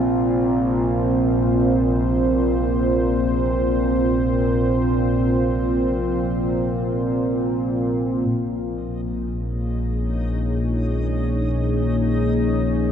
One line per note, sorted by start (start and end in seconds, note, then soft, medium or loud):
0.00 8.28 A#1 medium
0.00 8.28 A#2 medium
0.00 8.29 A#2 medium
0.00 8.29 C4 medium
0.00 10.41 F4 medium
0.00 0.21 A#4 medium
0.00 8.29 C5 medium
8.28 12.92 A#1 medium
8.28 12.92 A#2 medium
8.28 12.92 A#3 medium
8.28 12.92 D#4 medium
8.28 12.92 D#5 medium
9.18 12.92 G#4 medium
9.40 12.92 C#5 medium
9.81 12.92 D#4 medium